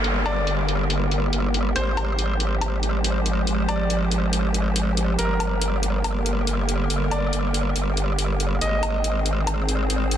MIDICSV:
0, 0, Header, 1, 6, 480
1, 0, Start_track
1, 0, Tempo, 428571
1, 48, Time_signature, 4, 2, 24, 8
1, 11396, End_track
2, 0, Start_track
2, 0, Title_t, "Grand piano"
2, 0, Program_c, 0, 0
2, 288, Note_on_c, 0, 74, 82
2, 574, Note_off_c, 0, 74, 0
2, 1968, Note_on_c, 0, 72, 89
2, 2601, Note_off_c, 0, 72, 0
2, 4126, Note_on_c, 0, 74, 80
2, 4413, Note_off_c, 0, 74, 0
2, 5807, Note_on_c, 0, 70, 83
2, 6441, Note_off_c, 0, 70, 0
2, 7967, Note_on_c, 0, 74, 78
2, 8254, Note_off_c, 0, 74, 0
2, 9647, Note_on_c, 0, 75, 88
2, 10281, Note_off_c, 0, 75, 0
2, 11396, End_track
3, 0, Start_track
3, 0, Title_t, "Ambient pad"
3, 0, Program_c, 1, 92
3, 0, Note_on_c, 1, 50, 74
3, 0, Note_on_c, 1, 58, 69
3, 0, Note_on_c, 1, 67, 67
3, 0, Note_on_c, 1, 70, 83
3, 1929, Note_off_c, 1, 70, 0
3, 1930, Note_off_c, 1, 50, 0
3, 1930, Note_off_c, 1, 58, 0
3, 1968, Note_on_c, 1, 53, 76
3, 1968, Note_on_c, 1, 56, 69
3, 1968, Note_on_c, 1, 72, 88
3, 5769, Note_off_c, 1, 56, 0
3, 5770, Note_off_c, 1, 53, 0
3, 5770, Note_off_c, 1, 72, 0
3, 5809, Note_on_c, 1, 50, 76
3, 5809, Note_on_c, 1, 58, 71
3, 5809, Note_on_c, 1, 70, 85
3, 9603, Note_off_c, 1, 67, 0
3, 9610, Note_off_c, 1, 50, 0
3, 9610, Note_off_c, 1, 58, 0
3, 9610, Note_off_c, 1, 70, 0
3, 9647, Note_on_c, 1, 72, 83
3, 9648, Note_on_c, 1, 51, 80
3, 9648, Note_on_c, 1, 60, 71
3, 9648, Note_on_c, 1, 68, 74
3, 11396, Note_off_c, 1, 51, 0
3, 11396, Note_off_c, 1, 60, 0
3, 11396, Note_off_c, 1, 68, 0
3, 11396, Note_off_c, 1, 72, 0
3, 11396, End_track
4, 0, Start_track
4, 0, Title_t, "Wobble bass"
4, 0, Program_c, 2, 39
4, 0, Note_on_c, 2, 31, 87
4, 1946, Note_off_c, 2, 31, 0
4, 1968, Note_on_c, 2, 32, 86
4, 5786, Note_off_c, 2, 32, 0
4, 5808, Note_on_c, 2, 31, 91
4, 9626, Note_off_c, 2, 31, 0
4, 9648, Note_on_c, 2, 32, 89
4, 11396, Note_off_c, 2, 32, 0
4, 11396, End_track
5, 0, Start_track
5, 0, Title_t, "Downlifter"
5, 0, Program_c, 3, 103
5, 0, Note_on_c, 3, 60, 61
5, 1968, Note_off_c, 3, 60, 0
5, 11396, End_track
6, 0, Start_track
6, 0, Title_t, "Drums"
6, 48, Note_on_c, 9, 42, 72
6, 160, Note_off_c, 9, 42, 0
6, 288, Note_on_c, 9, 42, 45
6, 288, Note_on_c, 9, 77, 68
6, 400, Note_off_c, 9, 42, 0
6, 400, Note_off_c, 9, 77, 0
6, 528, Note_on_c, 9, 42, 68
6, 640, Note_off_c, 9, 42, 0
6, 767, Note_on_c, 9, 42, 47
6, 879, Note_off_c, 9, 42, 0
6, 1008, Note_on_c, 9, 42, 68
6, 1120, Note_off_c, 9, 42, 0
6, 1248, Note_on_c, 9, 42, 46
6, 1360, Note_off_c, 9, 42, 0
6, 1488, Note_on_c, 9, 42, 72
6, 1600, Note_off_c, 9, 42, 0
6, 1728, Note_on_c, 9, 42, 48
6, 1840, Note_off_c, 9, 42, 0
6, 1968, Note_on_c, 9, 42, 67
6, 2080, Note_off_c, 9, 42, 0
6, 2209, Note_on_c, 9, 42, 45
6, 2209, Note_on_c, 9, 77, 70
6, 2321, Note_off_c, 9, 42, 0
6, 2321, Note_off_c, 9, 77, 0
6, 2448, Note_on_c, 9, 42, 67
6, 2560, Note_off_c, 9, 42, 0
6, 2689, Note_on_c, 9, 42, 48
6, 2801, Note_off_c, 9, 42, 0
6, 2928, Note_on_c, 9, 42, 64
6, 2928, Note_on_c, 9, 77, 70
6, 3040, Note_off_c, 9, 42, 0
6, 3040, Note_off_c, 9, 77, 0
6, 3169, Note_on_c, 9, 42, 45
6, 3281, Note_off_c, 9, 42, 0
6, 3410, Note_on_c, 9, 42, 68
6, 3522, Note_off_c, 9, 42, 0
6, 3649, Note_on_c, 9, 42, 48
6, 3761, Note_off_c, 9, 42, 0
6, 3889, Note_on_c, 9, 42, 64
6, 4001, Note_off_c, 9, 42, 0
6, 4128, Note_on_c, 9, 42, 43
6, 4128, Note_on_c, 9, 77, 71
6, 4240, Note_off_c, 9, 42, 0
6, 4240, Note_off_c, 9, 77, 0
6, 4368, Note_on_c, 9, 42, 63
6, 4480, Note_off_c, 9, 42, 0
6, 4608, Note_on_c, 9, 42, 43
6, 4720, Note_off_c, 9, 42, 0
6, 4849, Note_on_c, 9, 42, 64
6, 4961, Note_off_c, 9, 42, 0
6, 5090, Note_on_c, 9, 42, 44
6, 5202, Note_off_c, 9, 42, 0
6, 5329, Note_on_c, 9, 42, 66
6, 5441, Note_off_c, 9, 42, 0
6, 5569, Note_on_c, 9, 42, 47
6, 5681, Note_off_c, 9, 42, 0
6, 5809, Note_on_c, 9, 42, 69
6, 5921, Note_off_c, 9, 42, 0
6, 6049, Note_on_c, 9, 42, 45
6, 6049, Note_on_c, 9, 77, 76
6, 6161, Note_off_c, 9, 42, 0
6, 6161, Note_off_c, 9, 77, 0
6, 6289, Note_on_c, 9, 42, 68
6, 6401, Note_off_c, 9, 42, 0
6, 6529, Note_on_c, 9, 42, 46
6, 6641, Note_off_c, 9, 42, 0
6, 6769, Note_on_c, 9, 42, 69
6, 6769, Note_on_c, 9, 77, 73
6, 6881, Note_off_c, 9, 42, 0
6, 6881, Note_off_c, 9, 77, 0
6, 7010, Note_on_c, 9, 42, 45
6, 7122, Note_off_c, 9, 42, 0
6, 7250, Note_on_c, 9, 42, 67
6, 7362, Note_off_c, 9, 42, 0
6, 7489, Note_on_c, 9, 42, 48
6, 7601, Note_off_c, 9, 42, 0
6, 7729, Note_on_c, 9, 42, 71
6, 7841, Note_off_c, 9, 42, 0
6, 7968, Note_on_c, 9, 42, 46
6, 7968, Note_on_c, 9, 77, 73
6, 8080, Note_off_c, 9, 42, 0
6, 8080, Note_off_c, 9, 77, 0
6, 8209, Note_on_c, 9, 42, 72
6, 8321, Note_off_c, 9, 42, 0
6, 8449, Note_on_c, 9, 42, 48
6, 8561, Note_off_c, 9, 42, 0
6, 8688, Note_on_c, 9, 42, 69
6, 8800, Note_off_c, 9, 42, 0
6, 8928, Note_on_c, 9, 42, 46
6, 9040, Note_off_c, 9, 42, 0
6, 9168, Note_on_c, 9, 42, 71
6, 9280, Note_off_c, 9, 42, 0
6, 9408, Note_on_c, 9, 42, 48
6, 9520, Note_off_c, 9, 42, 0
6, 9648, Note_on_c, 9, 42, 76
6, 9760, Note_off_c, 9, 42, 0
6, 9888, Note_on_c, 9, 42, 49
6, 9888, Note_on_c, 9, 77, 72
6, 10000, Note_off_c, 9, 42, 0
6, 10000, Note_off_c, 9, 77, 0
6, 10128, Note_on_c, 9, 42, 75
6, 10240, Note_off_c, 9, 42, 0
6, 10368, Note_on_c, 9, 42, 49
6, 10480, Note_off_c, 9, 42, 0
6, 10608, Note_on_c, 9, 42, 71
6, 10608, Note_on_c, 9, 77, 73
6, 10720, Note_off_c, 9, 42, 0
6, 10720, Note_off_c, 9, 77, 0
6, 10848, Note_on_c, 9, 42, 48
6, 10960, Note_off_c, 9, 42, 0
6, 11087, Note_on_c, 9, 42, 75
6, 11199, Note_off_c, 9, 42, 0
6, 11328, Note_on_c, 9, 42, 50
6, 11396, Note_off_c, 9, 42, 0
6, 11396, End_track
0, 0, End_of_file